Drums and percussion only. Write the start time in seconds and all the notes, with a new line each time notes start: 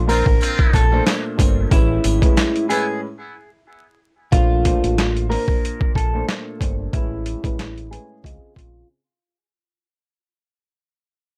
0.09 open hi-hat, sleigh bells
0.26 kick
0.41 closed hi-hat, sleigh bells
0.59 kick
0.73 kick, closed hi-hat, sleigh bells
1.06 snare, closed hi-hat, sleigh bells
1.39 kick, closed hi-hat, sleigh bells
1.71 kick, closed hi-hat, sleigh bells
2.04 closed hi-hat, sleigh bells
2.22 kick, closed hi-hat
2.37 snare, closed hi-hat, sleigh bells
2.56 closed hi-hat
2.70 closed hi-hat, sleigh bells
4.32 kick, closed hi-hat
4.65 kick, closed hi-hat
4.84 closed hi-hat
4.98 snare, closed hi-hat
5.17 closed hi-hat
5.32 open hi-hat
5.48 kick
5.65 closed hi-hat
5.81 kick
5.95 kick, closed hi-hat
6.28 snare, closed hi-hat
6.61 kick, closed hi-hat
6.93 kick, closed hi-hat
7.26 closed hi-hat
7.44 kick, closed hi-hat
7.59 snare, closed hi-hat
7.78 closed hi-hat
7.93 closed hi-hat
8.24 kick, closed hi-hat
8.56 kick, closed hi-hat